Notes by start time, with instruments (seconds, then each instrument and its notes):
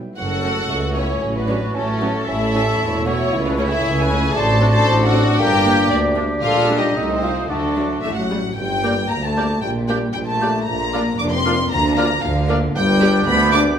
Already playing: viola section B3, violin section E5 G5
0.17 tuba F#1, double bass section F#1, cello section F#2, french horn section A3 C#4, violin section F#4 F#5, clarinet A4, flute A4, cor anglais C#5
0.43 viola section A3 C#4
0.69 cello section C#2, double bass section C#2, tuba C#2, bassoon A3
0.95 viola section A3 C#4, bassoon B3, violin section C#4 C#5, flute E4
1.21 double bass section A1, tuba A1, cello section A2, french horn section F#3, bassoon C#4, clarinet F#4
1.35 violin section B3 B4, flute D4
1.47 viola section F#3 C#4, bassoon D4
1.74 tuba A1, double bass section A1, cello section A2, violin section A3 A4, flute C#4, bassoon C#4
2.01 viola section F#3 C#4, bassoon B3
2.28 tuba A1, double bass section A1, cello section A2, french horn section A3 C#4, bassoon C#4, violin section E4 E5, clarinet A4, flute A4, cor anglais C#5
2.54 viola section A3 C#4, bassoon C#4
2.81 tuba E1, double bass section E1, cello section E2, bassoon E4
3.06 viola section A3 C#4, violin section C#4 C#5, flute E4, bassoon F#4
3.33 tuba C#2, double bass section C#2, cello section C#3, bassoon E4
3.46 violin section B3 B4, flute D4
3.58 viola section A3 C#4, violin section C#4 C#5, flute E4
3.67 violin section E4 E5, flute G#4
3.84 tuba C#2, double bass section C#2, cello section C#3
4.01 violin section G#4 G#5, flute B4
4.10 viola section A3 C#4
4.35 tuba A1, double bass section A1, cello section A2, french horn section C4 D4, bassoon D4, clarinet F#4, violin section A4 A5, flute C5, cor anglais D5
4.61 viola section C4 D4
4.70 violin section A4 A5, flute C5
4.87 double bass section A1, tuba A1, cello section A2, bassoon C4
5.05 violin section F#4 F#5, flute A4
5.13 viola section C4 D4
5.38 double bass section G1, tuba G1, cello section G2, french horn section A#3, bassoon A#3, violin section G4 G5, clarinet G4, flute A#4
5.65 viola section A#3 D4
5.90 tuba D2, cello section D2, double bass section D2, bassoon D4, violin section D4 D5, flute G4
6.16 viola section A#3 D4
6.42 tuba A#1, double bass section A#1, cello section A#2, french horn section G3 D4, bassoon D4, violin section F4 F5, flute A4, cor anglais D5
6.69 viola section G3 D4
6.78 violin section D#4 D#5, flute G4
6.96 tuba C2, double bass section C2, cello section C3, french horn section A3 D#4, bassoon D#4, clarinet A4, cor anglais D#5
7.13 violin section C4 C5, flute D#4
7.23 viola section A3 D#4, bassoon F4
7.49 double bass section D2, tuba D2, cello section D3, french horn section F#3 D4, violin section A3 A4, flute D4, clarinet F#4, bassoon F#4, cor anglais D5
7.76 viola section F#3 D4
8.02 double bass section A1, tuba A1, cello section A2, french horn section E3, viola section A3, violin section E5
8.17 french horn section F#3, violin section F#5
8.30 viola section G3
8.56 tuba G1, double bass section G1, cello section G2, french horn section G3, violin section G5
8.83 bassoon G3, viola section A#3 A#4, clarinet A#3, cor anglais D5, violin section D5, flute G6
9.09 double bass section D2, cello section D2, tuba D2, french horn section A#3, violin section A#5
9.23 french horn section A3, violin section A5
9.37 bassoon G3, viola section A#3 A#4, clarinet A#3, cor anglais D5, violin section D5, flute G6
9.62 tuba A#1, double bass section A#1, cello section A#2, french horn section G3, violin section G5
9.89 french horn section G3, bassoon A#3, viola section A#3 G4, clarinet D4, violin section D5 G5, cor anglais D5, flute G6
10.13 tuba A#1, double bass section A#1, cello section A#2, french horn section G3, violin section G5
10.27 french horn section A3, violin section A5
10.41 bassoon A#3, viola section A#3 G4, clarinet D4, cor anglais D5, violin section D5, flute G6
10.66 tuba A#1, double bass section A#1, cello section A#2, french horn section A#3, violin section A#5
10.93 bassoon A#3, viola section A#3 F4, clarinet D4, cor anglais D5, violin section D5, flute F6
11.19 tuba F1, double bass section F1, cello section F2, french horn section D4, violin section D6
11.31 french horn section C4, violin section C6
11.45 viola section A#3 F4, bassoon A#3, clarinet D4, cor anglais D5, violin section D5, flute F6
11.72 double bass section D2, tuba D2, cello section D3, french horn section A#3, violin section A#5
11.96 bassoon A#3, viola section A#3 F4, french horn section A#3, clarinet D4, violin section D5 A#5, cor anglais D5, flute F6
12.22 tuba D2, double bass section D2, cello section D3, french horn section F3, violin section F5
12.49 bassoon A#3, viola section A#3 F4, clarinet D4, violin section D5, cor anglais D5, flute F6
12.75 tuba G1, double bass section G1, cello section G2, french horn section G3, bassoon B3, clarinet D4, cor anglais D5, violin section G5, flute G6
13.00 viola section B3 G4, violin section D5
13.27 double bass section D2, tuba D2, cello section D2, french horn section B3, violin section B5
13.52 viola section B3 G4, french horn section D4, violin section D5 D6